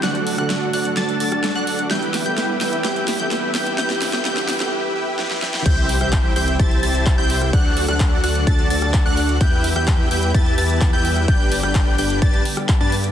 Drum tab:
CC |----------------|----------------|----------------|x---------------|
HH |xxo-x-oxxxoxx-ox|xxoxx-oxxxoxx-ox|xxoxxxox--------|x-oxx-oxxxoxx-ox|
CP |----------------|----------------|----------------|----x-------x---|
SD |o--ro---o--ro---|o-o-o-o-o-o-o-o-|oooooooo----oooo|---r-----------r|
BD |----------------|----------------|----------------|o---o---o---o---|

CC |----------------|----------------|----------------|
HH |x-oxx-oxxxoxx-ox|x-oxx-oxxxoxx-ox|x-oxx-oxxxoxx-ox|
CP |----x-------x---|----x-------x---|----x-------x---|
SD |---r-------r----|---r-----------r|---r-------r----|
BD |o---o---o---o---|o---o---o---o---|o---o---o---o---|